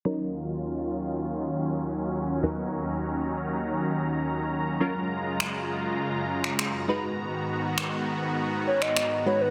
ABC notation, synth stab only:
X:1
M:4/4
L:1/8
Q:1/4=101
K:D#m
V:1 name="Synth stab"
[F,CDA]8 | [D,,F,B,DA]8 | [F,CEA]6- [F,CEA] [G,DFB]- | [G,DFB]6- [G,DFB] [G,DFB] |]